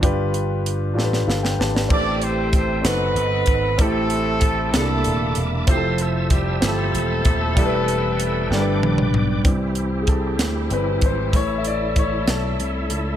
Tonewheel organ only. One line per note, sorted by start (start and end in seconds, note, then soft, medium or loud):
1.92 4.71 A4 medium
1.92 2.85 E5 medium
1.92 2.85 G5 medium
2.85 3.78 D#5 medium
2.85 3.78 F#5 medium
3.79 5.65 E5 medium
3.79 4.72 G5 medium
4.74 5.67 A#3 medium
4.74 7.54 A5 medium
4.74 5.67 D6 medium
5.68 7.55 C5 medium
5.68 7.55 E5 medium
5.68 8.49 E6 medium
7.57 8.49 B4 medium
7.57 8.50 E5 medium
7.57 9.43 G5 medium
8.51 9.44 B4 medium
8.51 9.44 D5 medium
8.51 9.44 D6 medium
9.45 11.32 C4 medium
9.45 11.31 E4 medium
9.45 11.32 G4 medium
11.32 13.16 E4 medium
11.32 13.16 A4 medium
11.32 13.16 E5 medium